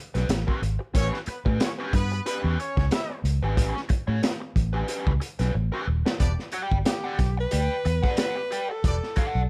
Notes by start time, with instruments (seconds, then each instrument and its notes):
0.14 fingered electric bass B1, overdriven electric guitar C#4 G4 B4, snare, closed hi-hat
0.29 fingered electric bass A1, muted overdriven electric guitar stroke, snare, closed hi-hat
0.47 overdriven electric guitar C#4 G4 B4, kick
0.62 fingered electric bass G#1, muted overdriven electric guitar stroke, closed hi-hat
0.79 muted overdriven electric guitar stroke
0.94 fingered electric bass A1, overdriven electric guitar C#4 G4 B4, horn section C#4 C#5, kick, closed hi-hat
1.14 snare
1.26 horn section B3 B4, muted overdriven electric guitar stroke, muted fingered electric bass stroke, closed hi-hat
1.45 fingered electric bass A2, overdriven electric guitar C#4 G4 B4, kick
1.60 horn section C#4 C#5, muted overdriven electric guitar stroke, snare, closed hi-hat
1.79 overdriven electric guitar C#4 G4 B4
1.93 fingered electric bass G2, horn section B3 B4, muted overdriven electric guitar stroke, kick, closed hi-hat
2.12 muted overdriven electric guitar stroke
2.26 horn section B3 B4, overdriven electric guitar C#4 G4 B4, closed hi-hat
2.44 fingered electric bass E2
2.58 horn section C#4 C#5, muted overdriven electric guitar stroke, closed hi-hat
2.77 fingered electric bass C#2, muted overdriven electric guitar stroke, kick, snare
2.91 horn section E4 E5, muted overdriven electric guitar stroke, snare, closed hi-hat
3.10 muted overdriven electric guitar stroke
3.24 fingered electric bass C#2, closed hi-hat
3.42 fingered electric bass G#1, overdriven electric guitar C#4 G4 B4
3.56 fingered electric bass A1, overdriven electric guitar C#4 G4 B4, kick, closed hi-hat
3.75 muted overdriven electric guitar stroke, snare
3.89 muted overdriven electric guitar stroke, muted fingered electric bass stroke, kick, closed hi-hat
4.07 fingered electric bass A2, overdriven electric guitar C#4 G4 C#5
4.22 muted overdriven electric guitar stroke, snare, closed hi-hat
4.40 muted overdriven electric guitar stroke
4.56 fingered electric bass A1, kick, closed hi-hat
4.73 overdriven electric guitar C#4 G4 B4
4.88 overdriven electric guitar C#4 G4 B4, closed hi-hat
5.06 fingered electric bass C#2, kick
5.20 muted overdriven electric guitar stroke, closed hi-hat
5.39 fingered electric bass B1, overdriven electric guitar C#4 G4 B4, snare, closed hi-hat
5.54 fingered electric bass A1, muted overdriven electric guitar stroke
5.72 overdriven electric guitar C#4 G4 B4
5.87 fingered electric bass D#1, muted overdriven electric guitar stroke
6.06 muted overdriven electric guitar stroke, snare
6.20 fingered electric bass E1, horn section B3 D4 G4 D5, kick, closed hi-hat
6.39 snare
6.52 overdriven electric guitar G4 D5 G5, closed hi-hat
6.71 fingered electric bass G1, kick
6.85 alto saxophone G4, muted overdriven electric guitar stroke, snare, closed hi-hat
7.04 overdriven electric guitar G4 D5 F#5
7.18 fingered electric bass B1, muted overdriven electric guitar stroke, kick, snare, closed hi-hat
7.37 alto saxophone B4, muted overdriven electric guitar stroke
7.51 fingered electric bass D2, overdriven electric guitar G4 D5 G5, closed hi-hat
7.85 fingered electric bass E2, muted overdriven electric guitar stroke, closed hi-hat
8.03 overdriven electric guitar G4 D5 F#5, kick, snare
8.17 overdriven electric guitar G4 D5 F#5, alto saxophone B4, snare, closed hi-hat
8.36 muted overdriven electric guitar stroke
8.51 overdriven electric guitar G4 D5 G5, closed hi-hat
8.70 alto saxophone A4, muted overdriven electric guitar stroke
8.84 fingered electric bass E1, horn section B3 D4 G4 D5, kick, closed hi-hat
9.03 snare
9.16 overdriven electric guitar G4 D5 F#5, kick, closed hi-hat
9.35 fingered electric bass B1